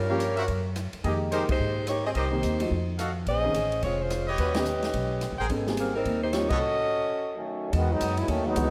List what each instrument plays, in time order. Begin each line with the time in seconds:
Already playing: upright bass G2, saxophone section G3 C#4 F4 A#4
0.09 grand piano F3 A#3 C#4 G4, trumpet section G4 A#4 C#5 F5
0.20 hi-hat pedal, ride
0.37 trumpet section F#4 A#4 C5 E5, ride
0.48 upright bass F#2, kick, ride
0.76 cross-stick, hi-hat pedal, ride
0.93 muted upright bass stroke, ride
1.04 upright bass F2, grand piano D#3 G#3 A#3 G4, trumpet section G4 G#4 A#4 D#5, kick, ride
1.32 saxophone section G#3 D#4 G4 A#4, trumpet section G4 G#4 A#4 C5, hi-hat pedal, ride
1.49 upright bass D#2, saxophone section G#3 D#4 G4 C5, kick, ride
1.60 upright bass G#2
1.87 saxophone section A#3 D#4 G4 C#5, cross-stick, hi-hat pedal, ride
2.05 saxophone section C4 G4 G#4 D#5
2.15 upright bass C2, saxophone section A#3 D#4 G4 C5, trumpet section G4 A#4 C5 D#5, kick, ride
2.31 grand piano D#3 A#3 C4 G4
2.43 upright bass D#2, hi-hat pedal, ride
2.60 grand piano F3 A3 D#4 F#4, ride
2.71 upright bass F2, kick
2.98 trumpet section F#4 A4 D#5 F5, cross-stick, hi-hat pedal, ride
3.27 upright bass A#1, saxophone section C#4 G#4 C5 D#5, kick, ride
3.44 grand piano D#3 C4 C#4 G#4
3.54 upright bass A1, hi-hat pedal, ride
3.72 ride
3.82 upright bass F1, saxophone section G#3 C4 F4 C#5, kick, ride
4.02 saxophone section G#3 C#4 F4 C5
4.10 cross-stick, hi-hat pedal, ride
4.27 trumpet section G4 B4 C#5 D#5
4.38 upright bass D#2, saxophone section G3 C#4 F#4 B4, kick, ride
4.54 grand piano D#3 B3 C#4 G4, saxophone section C#4 G4 B4 D#5, snare, ride
4.65 hi-hat pedal
4.83 snare, ride
4.94 upright bass B1, kick, ride
5.21 cross-stick, hi-hat pedal, ride
5.31 upright bass C#2
5.39 upright bass A1, trumpet section G#4 A#4 C5 G5
5.50 upright bass G#1, grand piano G#3 B3 C#4 A4, kick, ride
5.67 grand piano G3 A#3 C4 G#4, snare
5.77 saxophone section D#3 A#3 C4 G#4, hi-hat pedal, ride
5.95 saxophone section G3 C4 D#4 A#4
6.05 upright bass D#2, kick, ride
6.22 saxophone section A#3 D#4 G4 C5
6.33 grand piano G3 A#3 C4 F4, saxophone section A#3 D#4 G4 C#5, cross-stick, snare, hi-hat pedal, ride
6.49 upright bass C2, saxophone section C#4 F#4 A4 D#5, trumpet section A4 B4 C#5 D#5, kick, ride
7.35 trombone section D#3 F#3 A3 C#4
7.73 upright bass E2, trombone section D#3 G#3 B3 F#4, kick, ride
7.90 trombone section F#3 G#3 B3 D#4
8.01 upright bass F#2, kick, hi-hat pedal, ride
8.17 trombone section F#3 G#3 B3 E4, ride
8.28 upright bass D#2, trombone section D#3 F#3 A3 C#4, kick, ride
8.46 trombone section F#3 G#3 B3 D#4
8.56 upright bass C#2, grand piano E3 G#3 B3 D#4 F#4, kick, hi-hat pedal, ride